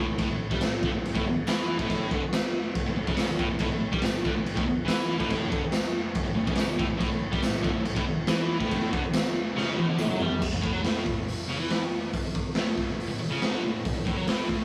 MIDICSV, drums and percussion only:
0, 0, Header, 1, 2, 480
1, 0, Start_track
1, 0, Tempo, 426743
1, 222, Time_signature, 4, 2, 24, 8
1, 16473, End_track
2, 0, Start_track
2, 0, Title_t, "Drums"
2, 204, Note_on_c, 9, 49, 68
2, 212, Note_on_c, 9, 36, 109
2, 317, Note_off_c, 9, 49, 0
2, 324, Note_off_c, 9, 36, 0
2, 574, Note_on_c, 9, 36, 104
2, 687, Note_off_c, 9, 36, 0
2, 687, Note_on_c, 9, 38, 117
2, 687, Note_on_c, 9, 54, 94
2, 690, Note_on_c, 9, 49, 66
2, 799, Note_off_c, 9, 38, 0
2, 799, Note_off_c, 9, 54, 0
2, 803, Note_off_c, 9, 49, 0
2, 932, Note_on_c, 9, 36, 102
2, 1045, Note_off_c, 9, 36, 0
2, 1186, Note_on_c, 9, 49, 61
2, 1298, Note_off_c, 9, 49, 0
2, 1299, Note_on_c, 9, 36, 109
2, 1411, Note_off_c, 9, 36, 0
2, 1652, Note_on_c, 9, 54, 97
2, 1664, Note_on_c, 9, 38, 116
2, 1668, Note_on_c, 9, 49, 55
2, 1764, Note_off_c, 9, 54, 0
2, 1777, Note_off_c, 9, 38, 0
2, 1780, Note_off_c, 9, 49, 0
2, 2015, Note_on_c, 9, 36, 112
2, 2127, Note_off_c, 9, 36, 0
2, 2137, Note_on_c, 9, 36, 107
2, 2150, Note_on_c, 9, 49, 63
2, 2250, Note_off_c, 9, 36, 0
2, 2262, Note_off_c, 9, 49, 0
2, 2376, Note_on_c, 9, 36, 111
2, 2489, Note_off_c, 9, 36, 0
2, 2618, Note_on_c, 9, 38, 122
2, 2622, Note_on_c, 9, 49, 59
2, 2627, Note_on_c, 9, 54, 98
2, 2731, Note_off_c, 9, 38, 0
2, 2734, Note_off_c, 9, 49, 0
2, 2739, Note_off_c, 9, 54, 0
2, 3097, Note_on_c, 9, 36, 106
2, 3098, Note_on_c, 9, 49, 60
2, 3210, Note_off_c, 9, 36, 0
2, 3210, Note_off_c, 9, 49, 0
2, 3456, Note_on_c, 9, 36, 108
2, 3565, Note_on_c, 9, 38, 107
2, 3568, Note_off_c, 9, 36, 0
2, 3569, Note_on_c, 9, 49, 63
2, 3592, Note_on_c, 9, 54, 84
2, 3678, Note_off_c, 9, 38, 0
2, 3681, Note_off_c, 9, 49, 0
2, 3704, Note_off_c, 9, 54, 0
2, 3815, Note_on_c, 9, 36, 106
2, 3927, Note_off_c, 9, 36, 0
2, 4035, Note_on_c, 9, 49, 69
2, 4055, Note_on_c, 9, 36, 109
2, 4148, Note_off_c, 9, 49, 0
2, 4167, Note_off_c, 9, 36, 0
2, 4419, Note_on_c, 9, 36, 114
2, 4521, Note_on_c, 9, 38, 115
2, 4525, Note_on_c, 9, 49, 65
2, 4531, Note_off_c, 9, 36, 0
2, 4561, Note_on_c, 9, 54, 87
2, 4634, Note_off_c, 9, 38, 0
2, 4637, Note_off_c, 9, 49, 0
2, 4673, Note_off_c, 9, 54, 0
2, 4782, Note_on_c, 9, 36, 100
2, 4894, Note_off_c, 9, 36, 0
2, 5019, Note_on_c, 9, 49, 62
2, 5132, Note_off_c, 9, 49, 0
2, 5142, Note_on_c, 9, 36, 114
2, 5254, Note_off_c, 9, 36, 0
2, 5489, Note_on_c, 9, 38, 120
2, 5492, Note_on_c, 9, 49, 59
2, 5509, Note_on_c, 9, 54, 95
2, 5601, Note_off_c, 9, 38, 0
2, 5605, Note_off_c, 9, 49, 0
2, 5622, Note_off_c, 9, 54, 0
2, 5851, Note_on_c, 9, 36, 113
2, 5963, Note_off_c, 9, 36, 0
2, 5963, Note_on_c, 9, 49, 63
2, 5970, Note_on_c, 9, 36, 106
2, 6075, Note_off_c, 9, 49, 0
2, 6082, Note_off_c, 9, 36, 0
2, 6209, Note_on_c, 9, 36, 112
2, 6321, Note_off_c, 9, 36, 0
2, 6435, Note_on_c, 9, 38, 115
2, 6439, Note_on_c, 9, 49, 66
2, 6457, Note_on_c, 9, 54, 100
2, 6548, Note_off_c, 9, 38, 0
2, 6551, Note_off_c, 9, 49, 0
2, 6570, Note_off_c, 9, 54, 0
2, 6914, Note_on_c, 9, 49, 61
2, 6923, Note_on_c, 9, 36, 106
2, 7027, Note_off_c, 9, 49, 0
2, 7035, Note_off_c, 9, 36, 0
2, 7280, Note_on_c, 9, 36, 115
2, 7375, Note_on_c, 9, 38, 113
2, 7378, Note_on_c, 9, 49, 64
2, 7393, Note_off_c, 9, 36, 0
2, 7417, Note_on_c, 9, 54, 100
2, 7487, Note_off_c, 9, 38, 0
2, 7491, Note_off_c, 9, 49, 0
2, 7530, Note_off_c, 9, 54, 0
2, 7642, Note_on_c, 9, 36, 104
2, 7755, Note_off_c, 9, 36, 0
2, 7879, Note_on_c, 9, 49, 67
2, 7880, Note_on_c, 9, 36, 112
2, 7992, Note_off_c, 9, 49, 0
2, 7993, Note_off_c, 9, 36, 0
2, 8242, Note_on_c, 9, 36, 112
2, 8352, Note_on_c, 9, 38, 111
2, 8355, Note_off_c, 9, 36, 0
2, 8355, Note_on_c, 9, 49, 70
2, 8362, Note_on_c, 9, 54, 103
2, 8465, Note_off_c, 9, 38, 0
2, 8468, Note_off_c, 9, 49, 0
2, 8475, Note_off_c, 9, 54, 0
2, 8598, Note_on_c, 9, 36, 108
2, 8711, Note_off_c, 9, 36, 0
2, 8833, Note_on_c, 9, 49, 71
2, 8945, Note_off_c, 9, 49, 0
2, 8959, Note_on_c, 9, 36, 104
2, 9072, Note_off_c, 9, 36, 0
2, 9305, Note_on_c, 9, 38, 117
2, 9308, Note_on_c, 9, 49, 61
2, 9318, Note_on_c, 9, 54, 108
2, 9417, Note_off_c, 9, 38, 0
2, 9421, Note_off_c, 9, 49, 0
2, 9431, Note_off_c, 9, 54, 0
2, 9679, Note_on_c, 9, 36, 106
2, 9791, Note_off_c, 9, 36, 0
2, 9799, Note_on_c, 9, 49, 62
2, 9803, Note_on_c, 9, 36, 100
2, 9912, Note_off_c, 9, 49, 0
2, 9916, Note_off_c, 9, 36, 0
2, 10045, Note_on_c, 9, 36, 115
2, 10157, Note_off_c, 9, 36, 0
2, 10275, Note_on_c, 9, 54, 113
2, 10276, Note_on_c, 9, 38, 127
2, 10279, Note_on_c, 9, 49, 64
2, 10388, Note_off_c, 9, 54, 0
2, 10389, Note_off_c, 9, 38, 0
2, 10392, Note_off_c, 9, 49, 0
2, 10764, Note_on_c, 9, 38, 63
2, 10877, Note_off_c, 9, 38, 0
2, 11004, Note_on_c, 9, 48, 82
2, 11117, Note_off_c, 9, 48, 0
2, 11230, Note_on_c, 9, 54, 108
2, 11234, Note_on_c, 9, 47, 90
2, 11342, Note_off_c, 9, 54, 0
2, 11347, Note_off_c, 9, 47, 0
2, 11363, Note_on_c, 9, 45, 91
2, 11476, Note_off_c, 9, 45, 0
2, 11478, Note_on_c, 9, 43, 107
2, 11591, Note_off_c, 9, 43, 0
2, 11604, Note_on_c, 9, 43, 91
2, 11717, Note_off_c, 9, 43, 0
2, 11717, Note_on_c, 9, 57, 115
2, 11721, Note_on_c, 9, 36, 110
2, 11829, Note_off_c, 9, 57, 0
2, 11833, Note_off_c, 9, 36, 0
2, 11963, Note_on_c, 9, 36, 93
2, 12076, Note_off_c, 9, 36, 0
2, 12200, Note_on_c, 9, 38, 107
2, 12203, Note_on_c, 9, 46, 66
2, 12312, Note_off_c, 9, 38, 0
2, 12316, Note_off_c, 9, 46, 0
2, 12325, Note_on_c, 9, 38, 32
2, 12438, Note_off_c, 9, 38, 0
2, 12442, Note_on_c, 9, 36, 85
2, 12555, Note_off_c, 9, 36, 0
2, 12690, Note_on_c, 9, 46, 59
2, 12803, Note_off_c, 9, 46, 0
2, 13166, Note_on_c, 9, 38, 115
2, 13170, Note_on_c, 9, 46, 59
2, 13279, Note_off_c, 9, 38, 0
2, 13282, Note_off_c, 9, 46, 0
2, 13648, Note_on_c, 9, 46, 61
2, 13650, Note_on_c, 9, 36, 108
2, 13760, Note_off_c, 9, 46, 0
2, 13762, Note_off_c, 9, 36, 0
2, 13892, Note_on_c, 9, 36, 91
2, 14004, Note_off_c, 9, 36, 0
2, 14117, Note_on_c, 9, 38, 115
2, 14121, Note_on_c, 9, 46, 54
2, 14230, Note_off_c, 9, 38, 0
2, 14233, Note_off_c, 9, 46, 0
2, 14354, Note_on_c, 9, 38, 32
2, 14371, Note_on_c, 9, 36, 87
2, 14466, Note_off_c, 9, 38, 0
2, 14484, Note_off_c, 9, 36, 0
2, 14621, Note_on_c, 9, 46, 51
2, 14734, Note_off_c, 9, 46, 0
2, 15097, Note_on_c, 9, 38, 114
2, 15100, Note_on_c, 9, 46, 58
2, 15210, Note_off_c, 9, 38, 0
2, 15213, Note_off_c, 9, 46, 0
2, 15581, Note_on_c, 9, 36, 114
2, 15582, Note_on_c, 9, 46, 61
2, 15694, Note_off_c, 9, 36, 0
2, 15694, Note_off_c, 9, 46, 0
2, 15824, Note_on_c, 9, 36, 95
2, 15936, Note_off_c, 9, 36, 0
2, 16060, Note_on_c, 9, 38, 119
2, 16063, Note_on_c, 9, 46, 64
2, 16172, Note_off_c, 9, 38, 0
2, 16176, Note_off_c, 9, 46, 0
2, 16300, Note_on_c, 9, 38, 33
2, 16302, Note_on_c, 9, 36, 82
2, 16413, Note_off_c, 9, 38, 0
2, 16414, Note_off_c, 9, 36, 0
2, 16473, End_track
0, 0, End_of_file